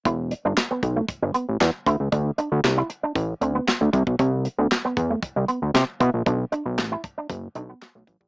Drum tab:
HH |x-x-x-x-x-x-x-x-|x-x-x-x-x-x-x-x-|x-x-x-x-x-x-x-x-|x-x-x-x-x-x-x-x-|
CP |----x-------x---|----x-------x---|----x-------x---|----x-------x---|
SD |----o-------o---|----o-------o---|----o-------o---|----o-------o---|
BD |o-----o-o-----o-|o-------o-----oo|o-----o-o-----o-|o-----o-o-----oo|